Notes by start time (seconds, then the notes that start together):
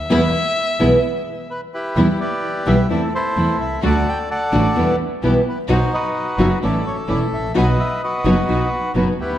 Already playing: E5
0.09 E2 B2 E3 G#3 B3 E4
0.79 B1 B2 E3 G#3 B3 E4
1.51 B4
1.74 E4 G4 B4
1.96 E2 B2 E3 G3 B3 E4
2.20 G4 B4 D5
2.66 B1 B2 E3 G3 B3 E4 E5
2.89 E2 E3 A3 C4 E4 A4 D5
3.15 E4 A4 C5
3.36 E2 E3 A3 C4 E4
3.60 C2 E5
3.82 D2 D3 A3 D4 F#4 A4 D5 F#5
4.09 G5
4.31 A4 D5 F#5
4.52 A1 D3 A3 D4 F#4
4.76 E2 B2 E3 G3 B3 E4 G4
5.22 B1 B2 E3 G3 B3 E4 G4 B4
5.49 B4
5.68 B1 B2 F#3 B3 D#4 F#4 C5
5.94 F#4 B4 D#5
6.38 F#1 B2 F#3 B3 D#4 F#4 E5
6.61 A1 E3 A3 C#4 E4 A4 D5
6.87 C#5
7.08 E1 E3 A3 C#4 E4 D5
7.32 A1 E5
7.54 B1 B2 F#3 B3 D#4 F#4 B4 D#5 F#5
7.80 E5
8.03 F#4 B4 D#5
8.25 F#1 B2 F#3 B3 D#4 F#4
8.48 B1 B2 F#3 B3 D#4 F#4
8.94 F#1 B2 F#3 B3 D#4 F#4
8.98 B4
9.19 D2 B3 E4 G4 B4